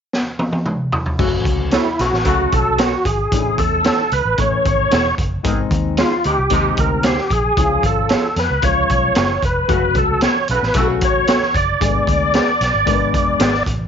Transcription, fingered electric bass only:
1.19 1.46 F#1 medium
1.46 1.76 C#2 medium
1.99 2.09 B1 medium
2.13 2.23 A1 medium
2.26 2.46 C#2 medium
2.53 2.93 B1 medium
3.05 3.26 G#1 medium
3.32 3.58 A1 medium
3.58 3.89 E2 medium
4.12 4.22 C#2 medium
4.25 4.35 A1 medium
4.38 4.59 A1 medium
4.66 4.86 G#1 medium
4.92 5.12 E1 medium
5.19 5.39 F#1 medium
5.45 5.65 G#1 loud
5.71 6.01 D#2 medium
6.25 6.35 D2 medium
6.38 6.48 C2 medium
6.51 6.71 D#2 medium
6.78 7.18 D2 medium
7.31 7.51 A#1 medium
7.57 7.77 C#2 medium
7.83 8.14 G#1 medium
8.36 8.47 F2 medium
8.50 8.60 C#2 medium
8.63 8.83 C#2 medium
8.90 9.10 B1 medium
9.17 9.37 F#1 medium
9.43 9.63 F1 medium
9.69 9.97 F#1 medium
9.95 10.26 C#2 medium
10.49 10.59 B1 medium
10.63 10.72 A1 medium
10.75 11.02 B1 medium
11.02 11.42 A1 medium
11.55 11.75 F#1 medium
11.81 12.02 G#1 medium
12.08 12.38 D2 medium
12.61 12.71 B1 medium
12.74 12.84 G#1 medium
12.88 13.14 G#1 medium
13.14 13.34 F#1 medium
13.41 13.61 G#1 medium
13.67 13.87 A1 medium

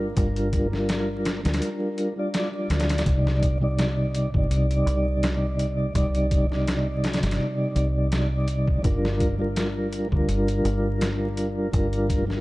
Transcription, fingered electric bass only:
0.00 0.14 G1 medium
0.17 1.41 G1 loud
1.45 1.59 D2 medium
2.70 3.02 D2 medium
3.06 4.30 C2 medium
4.34 4.49 G1 medium
4.50 4.83 C2 medium
4.86 5.92 C2 medium
5.95 7.19 C2 medium
7.23 7.38 G1 medium
7.76 8.81 C2 medium
8.84 10.08 G1 loud
10.12 10.27 D2 medium
10.28 10.61 G1 medium
10.65 11.70 G1 medium
11.73 12.40 G1 loud

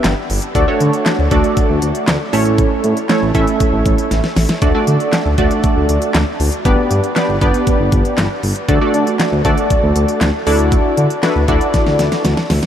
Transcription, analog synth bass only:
0.04 0.14 G1 loud
0.30 0.40 G1 loud
0.55 0.65 D2 loud
0.81 0.90 D3 loud
1.19 1.29 D2 loud
1.31 1.41 D2 loud
1.70 1.79 D2 loud
1.82 1.92 D2 loud
2.08 2.17 D2 medium
2.33 2.63 A1 loud
2.84 2.94 A2 loud
3.22 3.32 A1 loud
3.35 3.45 A1 loud
3.73 3.83 A1 loud
3.86 3.95 A1 loud
4.11 4.21 A1 loud
4.37 4.46 A1 loud
4.62 4.72 D2 loud
4.87 4.97 D3 loud
5.25 5.35 D2 loud
5.38 5.48 D2 loud
5.76 5.86 D2 loud
5.89 5.99 D2 loud
6.14 6.24 D2 loud
6.40 6.50 D2 loud
6.65 6.75 G1 loud
6.91 7.00 G2 loud
7.29 7.39 G1 loud
7.41 7.51 G1 loud
7.80 7.89 G1 loud
7.92 8.02 G1 loud
8.18 8.28 G1 loud
8.43 8.53 G1 loud
8.69 8.78 D2 loud
8.94 9.04 D3 loud
9.32 9.42 D2 loud
9.45 9.55 D2 loud
9.83 9.93 D2 loud
9.96 10.06 D2 loud
10.21 10.31 D2 loud
10.47 10.76 D2 loud
10.97 11.07 D3 loud
11.36 11.45 D2 loud
11.48 11.58 D2 loud
11.86 11.96 D2 loud
11.99 12.09 D2 loud
12.25 12.34 D2 loud
12.50 12.60 D2 loud

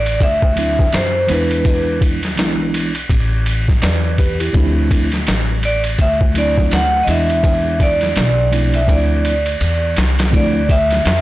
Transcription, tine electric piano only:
0.56 0.84 F#3 medium
0.56 0.84 A3 medium
0.56 0.85 C4 medium
0.56 0.85 D4 medium
0.56 0.85 E4 medium
1.27 2.18 E3 medium
1.27 2.18 G#3 medium
1.27 2.19 B3 medium
1.27 2.19 D4 medium
1.27 2.20 E4 medium
2.36 2.90 E3 medium
2.36 2.91 G#3 medium
2.36 2.91 B3 medium
2.36 2.92 D4 medium
2.36 2.92 E4 medium
3.82 4.17 B4 soft
3.82 4.17 D5 medium
4.19 4.38 G4 medium
4.19 4.39 B4 medium
4.40 4.56 E4 medium
4.40 4.74 G4 medium
4.53 5.07 F3 medium
4.53 5.08 A3 medium
4.53 5.08 C4 medium
4.53 5.09 D4 medium
4.57 5.09 E4 medium
6.34 6.80 F#3 medium
6.34 6.80 A3 medium
6.34 6.81 C4 medium
6.34 6.81 D4 medium
6.34 6.81 E4 medium
7.06 8.24 E3 medium
7.06 8.24 G#3 medium
7.06 8.25 B3 medium
7.06 8.25 D4 medium
7.06 8.26 E4 medium
8.50 8.79 F3 medium
8.50 8.79 A3 medium
8.50 8.80 C4 medium
8.50 8.80 D4 medium
8.50 8.80 E4 medium
8.87 9.32 F3 medium
8.87 9.33 A3 medium
8.87 9.33 C4 medium
8.87 9.33 D4 medium
8.87 9.34 E4 medium
10.31 10.59 F3 medium
10.31 10.59 A3 medium
10.31 10.60 C4 medium
10.31 10.60 D4 medium
10.31 10.61 E4 medium

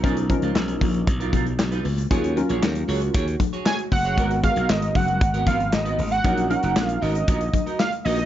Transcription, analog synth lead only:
3.66 3.78 G#5 loud
3.92 4.40 F#5 loud
4.44 4.71 F5 loud
4.70 4.95 D#5 loud
4.96 5.44 F#5 loud
5.47 5.71 F5 loud
5.73 6.09 D#5 loud
6.11 6.48 F#5 loud
6.50 6.86 F#5 loud
6.86 7.03 F5 loud
7.02 7.79 D#5 loud
7.79 7.91 F5 loud
8.05 8.25 D#5 loud

